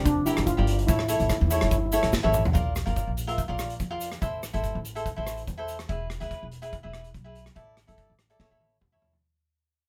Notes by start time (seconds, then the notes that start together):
Already playing: F1 D5
0.05 D4, kick, closed hi-hat, shaker
0.26 E4 G4 A#4 D5, closed hi-hat, shaker
0.37 G1, cross-stick, closed hi-hat, shaker
0.46 F4, kick, closed hi-hat, shaker
0.57 G1 G4 A#4 D5
0.67 closed hi-hat
0.79 closed hi-hat
0.87 A1 E4 A4 C#5, kick, closed hi-hat, shaker
0.96 E4, cross-stick
1.04 E4
1.08 E4 A4 C#5, closed hi-hat, shaker
1.20 A1 E4, closed hi-hat, shaker
1.25 E4
1.29 E4, kick, cross-stick, closed hi-hat, shaker
1.41 E2 E4
1.47 E4 A4, closed hi-hat, shaker
1.52 C#5
1.56 E4
1.61 G1 E4, cross-stick, closed hi-hat, shaker
1.70 E4, kick, closed hi-hat, shaker
1.78 E4
1.86 E4
1.92 E4 A4 C#5, closed hi-hat, shaker
2.03 A1, cross-stick, closed hi-hat
2.13 kick, snare, shaker
2.23 A1 E4 A4 C#5, high tom
2.33 mid tom, shaker
2.45 floor tom, shaker
2.53 A#1 F4 A#4 D5, kick, closed hi-hat, shaker
2.75 cross-stick, closed hi-hat, shaker
2.86 G1 F4 A#4 D5, closed hi-hat
2.96 kick, closed hi-hat, shaker
3.07 A#1
3.17 closed hi-hat, shaker
3.27 F4 A#4 E5, closed hi-hat
3.38 kick, closed hi-hat, shaker
3.48 A#1 F4 A#4 D5
3.59 cross-stick, closed hi-hat, shaker
3.70 closed hi-hat, shaker
3.80 F2, kick, closed hi-hat, shaker
3.91 F4 A#4 D5
4.01 closed hi-hat, shaker
4.12 cross-stick, closed hi-hat
4.21 A1 E4 A4 C5, kick, closed hi-hat, shaker
4.43 cross-stick, closed hi-hat, shaker
4.53 G1 E4 A4 C5, closed hi-hat
4.64 kick, closed hi-hat, shaker
4.75 A1
4.85 closed hi-hat, shaker
4.95 E4 A4 C5, closed hi-hat
5.06 kick, closed hi-hat, shaker
5.16 A1 E4 A4 C5
5.27 cross-stick, closed hi-hat, shaker
5.37 closed hi-hat, shaker
5.47 E2, kick, closed hi-hat, shaker
5.58 E4 A4 C5
5.68 closed hi-hat, shaker
5.79 cross-stick, closed hi-hat, shaker
5.89 E1 E4 G#4 B4, kick, closed hi-hat
6.10 cross-stick, closed hi-hat
6.20 D2 E4 G#4 B4, closed hi-hat
6.31 kick, closed hi-hat
6.43 E1
6.52 closed hi-hat
6.62 E4 G#4 B4, closed hi-hat
6.73 kick, closed hi-hat
6.83 E1 E4 G#4 B4
6.93 cross-stick, closed hi-hat
7.04 closed hi-hat
7.14 B1, kick, closed hi-hat
7.24 E4 G#4 B4
7.35 closed hi-hat
7.46 cross-stick, closed hi-hat
7.55 A1 E4 A4 D5, kick, closed hi-hat
7.77 cross-stick, closed hi-hat
7.87 G1 E4 A4 D5, closed hi-hat
7.98 kick, closed hi-hat
8.10 A1
8.19 cross-stick, closed hi-hat
8.30 E4 A4 D5, closed hi-hat
8.39 A1 E4 A4 C#5, kick, snare
8.51 A1 E4 A4 C#5
8.61 high tom
8.81 E2, kick, mid tom
8.92 E4 A4 C#5, mid tom
9.02 floor tom
9.13 floor tom